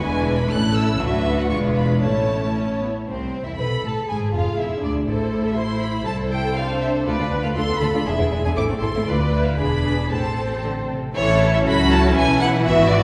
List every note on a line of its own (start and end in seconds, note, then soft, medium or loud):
0.00 0.50 E1 medium
0.00 0.50 E2 medium
0.00 0.49 G#3 soft
0.00 0.49 D4 medium
0.00 0.48 E4 medium
0.00 0.48 B4 medium
0.00 0.36 G#5 medium
0.39 0.50 B5 medium
0.49 0.99 A1 medium
0.49 0.99 A2 medium
0.49 1.00 A3 soft
0.49 1.00 C#4 soft
0.49 0.99 E4 medium
0.49 0.99 A4 soft
0.49 0.75 F#6 medium
0.75 1.00 E6 medium
0.99 1.50 D2 medium
0.99 1.51 D2 soft
0.99 1.49 F#3 soft
0.99 1.49 D4 medium
0.99 1.50 F#4 soft
0.99 1.49 B4 medium
0.99 1.38 E5 medium
1.38 1.51 F#5 medium
1.50 2.03 E1 medium
1.50 2.03 E2 soft
1.50 2.02 G#3 soft
1.50 2.02 D4 soft
1.50 2.03 F4 soft
1.50 2.03 B4 soft
1.50 1.58 C#6 medium
1.76 2.02 B5 soft
2.01 2.87 A1 soft
2.01 2.88 A2 soft
2.01 2.50 A3 soft
2.01 2.50 C#4 soft
2.01 2.87 E4 soft
2.01 2.86 C#5 soft
2.01 2.79 A5 medium
2.55 2.80 C#4 soft
2.82 2.90 B3 soft
3.08 3.43 C2 soft
3.08 3.43 C2 medium
3.08 3.44 C4 soft
3.08 3.43 C5 soft
3.46 3.58 E2 soft
3.46 3.51 E4 soft
3.46 3.59 E5 soft
3.58 3.66 B1 soft
3.58 3.67 B2 soft
3.58 4.06 A4 soft
3.58 3.67 B4 medium
3.58 3.83 B5 medium
3.83 3.92 A1 soft
3.83 3.92 A2 soft
3.83 4.08 A4 soft
3.83 4.09 A5 soft
4.09 4.33 G#1 soft
4.09 4.34 G#2 medium
4.09 4.34 G#4 medium
4.09 5.09 G#4 soft
4.09 4.17 G#5 medium
4.33 4.41 F1 soft
4.33 4.42 F2 soft
4.33 4.58 F4 medium
4.33 4.59 F5 medium
4.58 4.67 E1 soft
4.58 4.67 E2 soft
4.58 4.84 E4 soft
4.58 4.83 E5 medium
4.83 5.08 D2 medium
4.83 5.09 D4 soft
4.83 4.92 D5 medium
5.08 6.04 A1 soft
5.08 6.04 A2 soft
5.08 5.55 E4 soft
5.08 5.57 A4 soft
5.08 5.55 A4 soft
5.08 5.45 C5 medium
5.45 5.58 E5 medium
5.56 6.08 E4 soft
5.56 6.07 E4 soft
5.56 6.07 C5 soft
5.56 5.82 C6 medium
5.81 6.07 B5 medium
6.05 7.07 C2 soft
6.05 7.07 C2 medium
6.05 6.57 E4 soft
6.05 6.58 A4 medium
6.05 6.57 C5 soft
6.05 6.13 A5 medium
6.31 6.56 G5 medium
6.55 7.07 D4 soft
6.55 7.06 A4 soft
6.55 7.06 C5 medium
6.55 6.81 F5 medium
6.80 6.88 E5 medium
7.04 7.12 D2 medium
7.04 7.12 F4 medium
7.04 7.12 A4 medium
7.04 7.55 B4 medium
7.04 7.42 D5 medium
7.19 7.24 D2 soft
7.19 7.24 D4 soft
7.19 7.24 F4 soft
7.31 7.36 D2 soft
7.31 7.37 D2 soft
7.31 7.38 B3 soft
7.31 7.37 D4 soft
7.42 7.49 D2 medium
7.42 7.49 F4 medium
7.42 7.49 A4 medium
7.42 7.47 F5 medium
7.54 7.61 D2 soft
7.54 7.62 D2 soft
7.54 7.62 D4 soft
7.54 7.62 F4 soft
7.54 8.06 A4 medium
7.54 7.80 C6 medium
7.69 7.74 D2 soft
7.69 7.75 B3 medium
7.69 7.75 D4 medium
7.79 7.86 D2 medium
7.79 7.87 D2 medium
7.79 7.87 F4 medium
7.79 7.87 A4 medium
7.79 8.06 B5 medium
7.94 7.99 D2 soft
7.94 8.00 D4 medium
7.94 8.00 F4 medium
8.05 8.12 E1 medium
8.05 8.12 E2 medium
8.05 8.12 D4 medium
8.05 8.56 G#4 medium
8.05 8.12 G#4 medium
8.05 8.43 E5 medium
8.19 8.25 E2 soft
8.19 8.24 B3 soft
8.19 8.24 E4 soft
8.32 8.37 E1 soft
8.32 8.38 E2 soft
8.32 8.37 G#3 medium
8.32 8.37 D4 soft
8.43 8.50 E2 medium
8.43 8.50 D4 medium
8.43 8.50 G#4 medium
8.43 8.49 G#5 medium
8.54 8.62 A1 soft
8.54 8.63 A2 soft
8.54 8.62 C4 soft
8.54 8.62 E4 soft
8.54 9.06 A4 medium
8.54 8.62 D6 medium
8.70 8.75 A2 soft
8.70 8.75 A3 soft
8.70 8.75 C4 soft
8.80 8.86 A1 medium
8.80 8.88 A2 medium
8.80 8.87 E4 medium
8.80 8.87 A4 medium
8.80 9.06 C6 medium
8.96 9.01 A2 soft
8.96 9.00 C4 soft
8.96 9.00 E4 soft
9.05 9.54 D2 medium
9.05 9.55 D2 medium
9.05 9.17 F4 soft
9.05 9.58 B4 medium
9.05 9.55 B4 medium
9.05 9.45 D5 medium
9.34 9.59 E4 soft
9.45 9.58 F5 medium
9.57 10.09 E1 soft
9.57 10.09 E2 soft
9.57 10.10 D4 soft
9.57 9.84 G#4 medium
9.57 10.11 G#4 soft
9.57 10.09 B5 medium
9.85 9.93 B4 soft
10.10 10.95 A1 soft
10.10 10.58 A2 soft
10.10 10.94 C4 soft
10.10 10.96 A4 soft
10.10 10.88 C5 medium
10.10 10.62 A5 medium
10.63 10.71 D3 soft
10.90 11.15 C3 soft
11.15 11.63 A1 medium
11.15 11.63 E3 medium
11.15 12.63 C#4 medium
11.15 11.63 E4 medium
11.15 11.63 A4 medium
11.15 11.51 C#5 loud
11.15 11.63 C#5 medium
11.53 11.58 E5 medium
11.65 12.17 C#2 medium
11.65 12.15 F#3 medium
11.65 12.65 E4 medium
11.65 12.15 F#4 medium
11.65 12.17 A4 medium
11.65 11.90 B5 loud
11.91 12.16 A5 medium
12.16 12.66 B1 medium
12.16 13.03 E3 medium
12.16 13.03 E4 medium
12.16 13.03 B4 medium
12.16 12.41 G#5 loud
12.40 12.48 F#5 medium
12.65 13.03 G#1 medium
12.65 13.03 B3 medium
12.65 13.03 F#4 medium
12.65 12.90 E5 medium
12.90 13.03 D5 medium